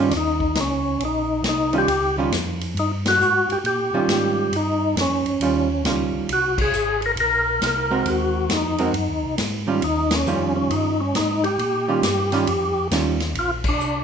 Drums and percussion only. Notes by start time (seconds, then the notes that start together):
0.11 snare, ride
0.40 kick
0.55 snare, hi-hat pedal, ride
1.00 ride
1.44 snare, hi-hat pedal, ride
1.73 ride
1.88 ride
2.32 snare, hi-hat pedal, ride
2.61 ride
2.77 ride
3.06 snare, ride
3.21 hi-hat pedal
3.50 ride
3.65 ride
4.09 snare, hi-hat pedal, ride
4.53 ride
4.97 snare, hi-hat pedal, ride
5.26 ride
5.41 ride
5.85 snare, hi-hat pedal, ride
6.29 ride
6.58 kick, crash
6.73 hi-hat pedal
7.02 ride
7.17 ride
7.62 snare, hi-hat pedal, ride
8.06 ride
8.50 snare, hi-hat pedal, ride
8.78 ride
8.94 ride
9.38 snare, hi-hat pedal, ride
9.82 ride
10.11 snare, ride
10.26 hi-hat pedal
10.70 ride
11.15 snare, hi-hat pedal, ride
11.44 ride
11.59 ride
12.03 snare, hi-hat pedal, ride
12.32 snare, ride
12.47 ride
12.91 snare, hi-hat pedal, ride
13.20 snare, ride
13.35 ride
13.64 kick, crash
13.80 hi-hat pedal